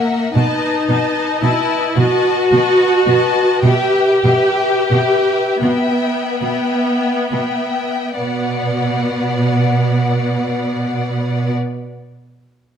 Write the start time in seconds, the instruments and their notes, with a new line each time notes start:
Already playing: viola section A#3, violin section A#4 E5 F#5
0.35 cello section B2, viola section D#4, violin section B4 D#5 A5
0.89 cello section B2, violin section B4 D#5 A5
1.43 cello section B2, viola section E4, violin section B4 D#5 A5
1.97 cello section B2, viola section F#4, violin section B4 D#5 A5
2.52 cello section B2, violin section B4 D#5 A5
3.07 cello section B2, violin section B4 D#5 A5
3.63 cello section B2, viola section G4, violin section B4 E5 G5
4.24 cello section B2, violin section B4 E5 G5
4.91 cello section B2, violin section B4 E5 G5
5.62 cello section B2, viola section B3, violin section B4 E5 G5
6.42 cello section B2, violin section B4 E5 G5
7.32 cello section B2, violin section B4 E5 G5
8.19 cello section B2, viola section B3, violin section B4 D5 F#5